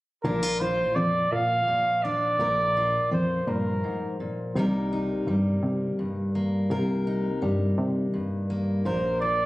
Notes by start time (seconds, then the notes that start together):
0.23 A#1 A#2 D4 A#4
0.43 F4
0.60 F4 C5
0.95 F2 F3 D5
1.32 A#2 F5
1.68 A#2
2.03 D4 D5
2.39 A#1 A#2 A#4
2.77 F4
3.11 F2 F3 C5
3.47 G2 A#2 A#4
3.84 G#2
4.20 A#2
4.55 C2 C3 G3 A#3 D#4
4.59 A#4
4.93 D#4
5.27 G2 G3
5.63 C3
5.99 G2
6.35 A#3
6.70 C2 C3 A#4
7.07 D#4
7.42 G2 G3
7.78 C3
8.14 G2
8.50 A#3
8.85 A#1 A#2 A#4 C5
9.21 F4 D5